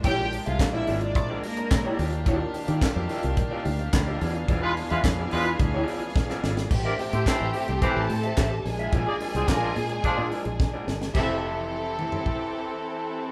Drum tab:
CC |----------------|----------------|----------------|x---------------|
HH |x-oxx-oxx-oxx-ox|x-oxx-oxx-oxx-ox|x-oxx-oxx-ox----|--oxx-oxx-oxx-ox|
CP |----x-------x---|----x-------x---|----x-----------|----x-------x---|
SD |----o-------o---|----o-------o---|----o-------oooo|----o-------o-o-|
T2 |----------------|----------------|----------------|----------------|
FT |----------------|----------------|----------------|----------------|
BD |o---o---o---o---|o---o---o---o---|o---o---o---o---|o---o---o---o---|

CC |----------------|x---------------|
HH |x-oxx-oxx-ox----|----------------|
CP |----x-----------|----------------|
SD |----o-------o-oo|----------------|
T2 |----------------|------o---------|
FT |----------------|-------o--------|
BD |o---o---o---o---|o-------o-------|